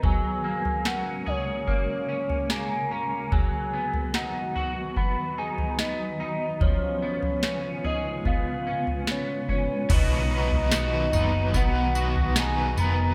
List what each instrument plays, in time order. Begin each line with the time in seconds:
Already playing: clean electric guitar B3 D#4 F#4
0.03 ambient pad C#3 G#3 A#3 F#4 A#4, clean electric guitar F#3, soft synth lead G#5, kick, floor tom
0.44 clean electric guitar A#3
0.65 floor tom
0.85 clean electric guitar C#4, soft synth lead F#5, snare
1.26 clean electric guitar G#4, soft synth lead C#5, floor tom
1.67 clean electric guitar A#3, soft synth lead C#5, kick
2.09 clean electric guitar C#4
2.30 floor tom
2.50 clean electric guitar A#3, soft synth lead G#5, snare
2.91 clean electric guitar C#4, soft synth lead A#5
3.32 ambient pad D#3 F#3 B3 B4, clean electric guitar F#3, soft synth lead G#5, kick, floor tom
3.73 clean electric guitar B3
3.94 floor tom
4.14 clean electric guitar D#4, soft synth lead F#5, snare
4.56 clean electric guitar F#4, floor tom
4.97 clean electric guitar B3, soft synth lead B5, kick
5.38 clean electric guitar D#4, soft synth lead G#5
5.58 floor tom
5.79 clean electric guitar B3, soft synth lead D#5, snare
6.20 clean electric guitar D#4, soft synth lead D#5
6.61 ambient pad C#3 G#3 F4, clean electric guitar F3, soft synth lead C#5, kick, floor tom
7.02 clean electric guitar B3
7.23 floor tom
7.43 clean electric guitar C#4, snare
7.84 clean electric guitar G#4, soft synth lead D#5, floor tom
8.25 clean electric guitar B3, soft synth lead F5, kick, floor tom
8.67 clean electric guitar C#4
8.87 floor tom
9.07 clean electric guitar B3, soft synth lead C#5, snare
9.49 clean electric guitar C#4, soft synth lead C#5, kick
9.89 picked electric bass B1, overdriven electric guitar B2 D#3 F#3 B3 D#4 B4, ambient pad D#3 F#3 B3 F#4 B4, clean electric guitar B3 F#4, soft synth lead D#5, kick, floor tom, crash, tambourine
10.30 overdriven electric guitar B3 D#4 B4, clean electric guitar D#4
10.34 overdriven electric guitar F#3
10.51 floor tom
10.71 overdriven electric guitar B2 D#3 F#3 B3 D#4 B4, clean electric guitar F#4, snare, tambourine
11.13 picked electric bass F#1, overdriven electric guitar B3 D#4 B4, clean electric guitar D#4, floor tom, tambourine
11.17 overdriven electric guitar F#3
11.54 picked electric bass B1, overdriven electric guitar F#3 B3 D#4, clean electric guitar B3, soft synth lead F#5, kick, tambourine
11.58 overdriven electric guitar B4
11.95 overdriven electric guitar B3 D#4 B4, clean electric guitar F#4, tambourine
11.99 overdriven electric guitar F#3
12.16 floor tom
12.36 overdriven electric guitar B2 D#3 F#3 B3 D#4 B4, clean electric guitar D#4, soft synth lead G#5, snare, tambourine
12.77 picked electric bass F1, clean electric guitar B3, overdriven electric guitar B3 D#4 B4, soft synth lead A#5, tambourine
12.81 overdriven electric guitar F#3